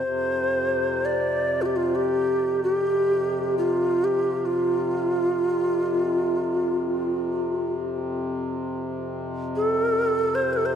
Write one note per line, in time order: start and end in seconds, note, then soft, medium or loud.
0.00 10.75 F2 medium
0.00 10.75 C3 medium
0.00 1.07 C5 medium
1.05 1.63 D5 medium
1.62 1.67 F4 medium
1.62 1.78 G4 medium
1.76 1.97 F4 medium
1.95 2.63 G4 medium
2.64 3.56 G4 medium
3.58 4.06 F4 medium
4.04 4.47 G4 medium
4.46 7.73 F4 medium
9.56 10.37 A4 medium
10.35 10.55 C5 medium
10.53 10.67 A4 medium
10.65 10.75 C5 medium